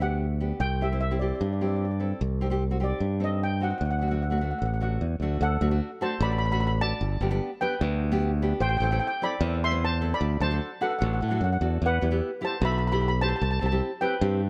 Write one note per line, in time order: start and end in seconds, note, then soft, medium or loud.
0.00 0.51 D2 medium
0.00 0.24 B3 medium
0.00 0.24 D4 medium
0.00 0.25 G4 medium
0.00 0.38 F#5 medium
0.40 0.60 B3 medium
0.40 0.60 D4 medium
0.40 0.61 G4 medium
0.60 1.31 C2 medium
0.60 0.79 G5 loud
0.81 0.87 C4 medium
0.81 0.87 E4 medium
0.81 0.87 G4 medium
0.81 0.99 E5 medium
0.92 1.03 C4 medium
0.92 1.03 E4 medium
0.92 1.04 G4 medium
1.01 1.21 E5 medium
1.11 1.17 C4 medium
1.11 1.17 E4 medium
1.11 1.17 G4 medium
1.19 1.45 C4 medium
1.19 1.45 E4 medium
1.19 1.45 G4 medium
1.19 1.27 D5 medium
1.28 1.34 D5 soft
1.35 1.42 D5 soft
1.41 2.11 G2 medium
1.41 1.50 D5 soft
1.53 1.59 D5 soft
1.61 1.85 C4 medium
1.61 1.85 E4 medium
1.61 1.85 G4 medium
1.61 1.67 D5 soft
1.68 1.74 D5 medium
1.76 1.82 D5 soft
1.85 1.90 D5 medium
1.91 1.97 D5 soft
2.00 2.20 C4 medium
2.00 2.20 E4 medium
2.00 2.21 A4 medium
2.21 2.92 C2 loud
2.41 2.47 C4 medium
2.41 2.47 D#4 medium
2.41 2.47 G4 medium
2.50 2.63 C4 medium
2.50 2.63 D#4 medium
2.50 2.63 G4 medium
2.70 2.77 C4 medium
2.70 2.77 D#4 medium
2.70 2.77 F#4 medium
2.80 3.05 C4 medium
2.80 3.05 D#4 medium
2.80 3.05 G4 medium
2.80 3.24 D5 medium
3.00 3.72 G2 medium
3.20 3.45 C4 medium
3.20 3.45 D#4 medium
3.20 3.45 A4 medium
3.20 3.43 D#5 medium
3.43 3.63 G5 medium
3.60 3.81 C4 medium
3.60 3.81 D#4 medium
3.60 3.82 F#4 medium
3.60 3.69 F#5 medium
3.70 3.77 F#5 medium
3.78 4.52 D2 medium
3.78 3.84 F#5 medium
3.85 3.89 F#5 medium
3.91 3.98 F#5 medium
3.99 4.07 A3 medium
3.99 4.08 D4 medium
3.99 4.08 F#4 medium
3.99 4.06 F#5 medium
4.08 4.23 A3 medium
4.08 4.23 D4 medium
4.08 4.23 F#4 medium
4.08 4.13 F#5 medium
4.14 4.21 F#5 soft
4.22 4.29 F#5 medium
4.30 4.37 A3 medium
4.30 4.37 D4 medium
4.30 4.38 F#4 medium
4.30 4.36 F#5 medium
4.38 4.65 A3 medium
4.38 4.65 D4 medium
4.38 4.66 F#4 medium
4.38 4.43 F#5 medium
4.44 4.50 F#5 medium
4.51 4.57 F#5 medium
4.58 4.97 A1 medium
4.58 4.64 F#5 medium
4.65 4.72 F#5 medium
4.74 4.81 F#5 medium
4.80 5.05 A3 medium
4.80 5.05 D4 medium
4.80 5.05 F#4 medium
4.80 4.89 F#5 medium
5.01 5.19 E2 medium
5.20 5.39 D2 medium
5.20 5.42 A3 medium
5.20 5.42 D4 medium
5.20 5.42 F#4 medium
5.41 5.59 D2 medium
5.41 5.79 A4 medium
5.41 5.79 F#5 loud
5.61 5.79 D2 medium
5.61 5.67 A3 medium
5.61 5.68 D4 medium
5.61 5.68 F#4 medium
5.71 5.90 A3 medium
5.71 5.90 D4 medium
5.71 5.89 F#4 medium
6.01 6.14 A3 medium
6.01 6.14 D4 medium
6.01 6.14 F#4 medium
6.01 6.21 C5 medium
6.01 6.23 A5 medium
6.20 6.92 A1 loud
6.20 6.39 A3 medium
6.20 6.39 D4 medium
6.20 6.40 F#4 medium
6.20 6.29 D5 medium
6.20 6.29 B5 medium
6.32 6.37 B5 medium
6.38 6.44 B5 medium
6.45 6.51 B5 medium
6.51 6.70 A3 medium
6.51 6.70 D4 medium
6.51 6.70 F#4 medium
6.51 6.59 B5 medium
6.60 6.66 B5 medium
6.67 6.74 B5 medium
6.81 7.01 A3 medium
6.81 7.02 D4 medium
6.81 7.02 F#4 medium
6.81 7.38 D5 medium
6.81 7.38 A5 loud
7.01 7.19 G1 medium
7.21 7.39 G1 medium
7.21 7.28 B3 medium
7.21 7.28 D4 medium
7.21 7.28 G4 medium
7.31 7.49 B3 medium
7.31 7.49 D4 medium
7.31 7.49 G4 loud
7.61 7.74 B3 medium
7.61 7.74 D4 medium
7.61 7.74 G4 medium
7.61 8.38 B4 medium
7.61 8.37 G5 loud
7.81 8.52 D2 loud
7.81 7.99 B3 medium
7.81 8.00 D4 medium
7.81 8.00 F#4 medium
8.12 8.30 B3 loud
8.12 8.30 D4 medium
8.12 8.30 G4 loud
8.42 8.62 B3 medium
8.42 8.62 D4 medium
8.42 8.62 G4 medium
8.60 8.79 A1 loud
8.60 8.68 C5 medium
8.60 8.68 G5 loud
8.69 8.76 G5 medium
8.77 8.99 A1 medium
8.77 8.83 G5 medium
8.82 8.88 C4 medium
8.82 8.88 E4 medium
8.82 8.88 A4 medium
8.82 8.90 G5 medium
8.91 9.10 C4 medium
8.91 9.10 E4 medium
8.91 9.10 A4 medium
8.91 8.99 G5 medium
9.00 9.06 G5 medium
9.07 9.15 G5 medium
9.22 9.34 C4 medium
9.22 9.34 E4 medium
9.22 9.34 A4 medium
9.22 9.60 D5 medium
9.22 9.60 B5 loud
9.41 10.12 E2 loud
9.41 9.59 C4 medium
9.41 9.59 E4 medium
9.41 9.60 A4 medium
9.64 9.82 E5 medium
9.64 9.83 C6 loud
9.71 9.89 C4 medium
9.71 9.89 E4 medium
9.71 9.90 B4 medium
9.85 10.11 C5 medium
9.85 10.14 A5 loud
10.01 10.21 C4 medium
10.01 10.22 E4 medium
10.01 10.22 A4 medium
10.14 10.41 D5 medium
10.14 10.44 B5 medium
10.21 10.39 D2 medium
10.40 10.59 D2 medium
10.40 10.47 D4 medium
10.40 10.48 F#4 medium
10.40 10.47 A4 medium
10.40 10.79 C5 medium
10.40 10.83 A5 loud
10.51 10.69 D4 medium
10.51 10.69 F#4 medium
10.51 10.70 A4 medium
10.81 10.93 D4 medium
10.81 10.93 F#4 medium
10.81 10.89 A4 medium
10.81 10.94 B4 medium
10.81 10.89 F#5 loud
10.90 10.97 F#5 medium
10.99 11.19 A1 loud
10.99 11.19 D4 medium
10.99 11.19 F#4 medium
10.99 11.19 A4 medium
10.99 11.05 F#5 medium
11.06 11.12 F#5 medium
11.14 11.20 F#5 medium
11.21 11.40 A2 medium
11.21 11.27 F#5 medium
11.28 11.49 D4 medium
11.28 11.49 F#4 medium
11.28 11.50 A4 medium
11.28 11.35 F#5 medium
11.38 11.59 F#2 medium
11.38 11.43 F#5 medium
11.44 11.50 F#5 medium
11.53 11.58 F#5 medium
11.61 11.79 E2 medium
11.61 11.81 D4 medium
11.61 11.82 F#4 medium
11.61 11.82 A4 medium
11.82 11.99 E2 medium
11.86 12.21 B4 medium
11.86 12.21 F#5 loud
12.01 12.20 E2 medium
12.01 12.08 B3 medium
12.01 12.08 E4 medium
12.01 12.08 G4 medium
12.11 12.29 B3 medium
12.11 12.30 E4 medium
12.11 12.30 G4 medium
12.41 12.53 B3 medium
12.41 12.54 E4 medium
12.41 12.54 G4 medium
12.41 12.62 C5 medium
12.41 12.64 A5 medium
12.61 13.32 B1 loud
12.61 12.79 B3 medium
12.61 12.80 E4 medium
12.61 12.80 F#4 medium
12.65 12.71 E5 medium
12.65 12.71 B5 medium
12.72 12.77 B5 medium
12.78 12.85 B5 medium
12.87 12.91 B5 medium
12.92 13.10 B3 medium
12.92 13.10 E4 medium
12.92 13.10 G4 medium
12.92 13.00 B5 medium
13.01 13.07 B5 medium
13.08 13.15 B5 medium
13.21 13.42 B3 medium
13.21 13.42 E4 medium
13.21 13.42 G4 medium
13.21 13.29 C5 medium
13.21 13.28 A5 loud
13.29 13.35 A5 medium
13.36 13.41 A5 medium
13.41 13.59 C2 medium
13.41 13.50 A5 medium
13.51 13.58 A5 medium
13.60 13.80 C2 medium
13.60 13.67 C4 medium
13.60 13.68 E4 medium
13.60 13.68 G4 medium
13.60 13.65 A5 medium
13.66 13.73 A5 medium
13.71 13.90 C4 medium
13.71 13.90 E4 medium
13.71 13.90 G4 medium
14.01 14.14 C4 medium
14.01 14.14 E4 medium
14.01 14.14 G4 medium
14.01 14.50 B4 medium
14.01 14.50 G5 medium
14.21 14.50 G2 loud
14.21 14.40 C4 medium
14.21 14.40 E4 medium
14.21 14.40 G4 medium